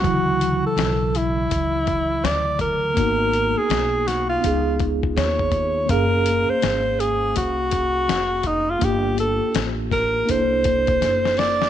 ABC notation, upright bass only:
X:1
M:4/4
L:1/16
Q:"Swing 16ths" 1/4=82
K:F#phr
V:1 name="Upright bass" clef=bass
D,,3 z B,,,4 C,,4 D,,4 | ^G,,,3 z B,,,4 C,,4 ^D,,4 | F,,,3 z ^G,,,4 =C,,4 ^E,,,4 | G,,,3 z A,,,4 =C,,4 F,,,4 |]